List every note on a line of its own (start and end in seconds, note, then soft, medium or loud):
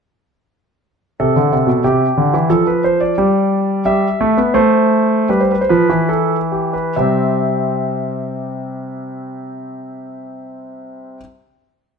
1.20 1.35 C3 medium
1.20 1.82 A4 medium
1.36 1.52 D3 medium
1.52 1.68 C3 medium
1.67 1.83 B2 medium
1.84 2.04 C3 medium
1.84 2.48 G4 medium
2.17 2.33 D3 medium
2.34 2.49 E3 medium
2.50 3.14 F3 medium
2.50 2.66 A4 medium
2.67 2.83 B4 medium
2.84 3.00 C5 medium
3.01 3.82 D5 medium
3.18 3.83 G3 medium
3.85 4.07 G3 medium
3.85 4.54 E5 medium
4.21 4.37 A3 medium
4.37 4.55 B3 medium
4.54 5.27 A3 medium
4.54 5.27 C5 medium
5.29 5.54 G3 medium
5.29 5.40 B4 medium
5.41 5.50 C5 medium
5.52 5.61 B4 medium
5.61 5.71 C5 medium
5.69 5.89 F3 medium
5.69 6.08 B4 medium
5.89 6.93 E3 medium
6.09 6.35 A4 medium
6.52 6.73 G4 soft
6.73 6.95 B4 medium
6.96 11.18 C3 medium
6.96 11.20 G3 soft
6.96 11.20 C4 soft
6.96 11.17 E5 medium